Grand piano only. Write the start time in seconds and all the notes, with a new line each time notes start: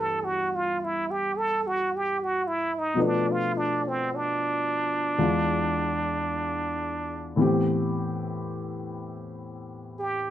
Already playing: G2 E3 A3 B3 G4
2.94 B2 F3 A3
2.99 D4 B4
5.18 E2 E3 G#3 D4 F4
7.36 A2 E3 B3 C4
7.42 G4